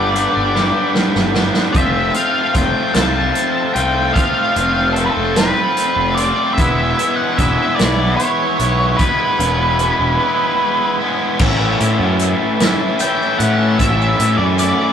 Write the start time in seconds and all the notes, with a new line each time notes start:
Already playing: G1 G2 D3 G3 B3 D4 G4 B4 D5 F#5
0.14 D3 G3 B3 D4, closed hi-hat
0.36 G1
0.54 G2 D3 G3 B3 D4, snare
0.95 snare
1.15 G1, snare
1.35 G3 B3 D4, snare
1.54 snare
1.73 F1 F3 A3 C4 F4 A4 E5 A5, kick, closed hi-hat
2.14 A3 C4 F4 F5, closed hi-hat
2.53 F1 F3 A3 C4 F4 G5, kick, closed hi-hat
2.94 C2 F3 A3 C4 F4 A5, snare, closed hi-hat
3.35 closed hi-hat
3.74 C2 A3 C4 F4 G5, closed hi-hat
4.14 F3 A3 C4 F4 F5, kick, closed hi-hat
4.56 F1 C4 F4, closed hi-hat
4.60 A3
4.93 A4, closed hi-hat
4.98 F3 A3 C4 F4
5.05 B4
5.11 A4
5.17 F1
5.36 F3 A3 C4 F4 B4, snare, closed hi-hat
5.77 closed hi-hat
5.96 F1
6.15 F4 D5, closed hi-hat
6.19 A3 C4
6.54 E5 G#5
6.58 E1 E3 G#3 B3 E4 G#4 B4, kick, closed hi-hat
6.98 G#3 B3 E4, closed hi-hat
7.16 F#5
7.37 E1 E3 G#3 B3 E4 E5, kick, closed hi-hat
7.76 G#3 B3 E4 D5, snare, closed hi-hat
7.80 B1 E3
8.16 C#5, closed hi-hat
8.58 B1 G#3 B3 E4, closed hi-hat
8.97 E3 G#3 B3 E4 B4, kick, closed hi-hat
9.39 E1 G#3 B3 E4, closed hi-hat
9.79 E3 G#3 B3 E4, closed hi-hat
9.99 E1
10.19 E3 G#3 B3 E4
10.99 G#3 B3 E4
11.39 A1 A2 E3 A3 C#4 E4 A4 E5 A5, kick, crash, maracas
11.62 maracas
11.80 A2 A3 C#4 E4, closed hi-hat, maracas
11.99 F#2
12.19 closed hi-hat, maracas
12.60 A2 E3 A3 C#4 E4, snare, closed hi-hat
13.00 E3 A3 C#4 G5, closed hi-hat, maracas
13.04 E4
13.22 maracas
13.39 A2 E4 F#5, closed hi-hat, maracas
13.43 A3 C#4
13.78 A1 A2 E3 A3 C#4 E5, kick, closed hi-hat, maracas
13.82 E4
14.02 maracas
14.19 A2 A3 C#4 E4, closed hi-hat, maracas
14.38 F#2 D5
14.59 D5, closed hi-hat, maracas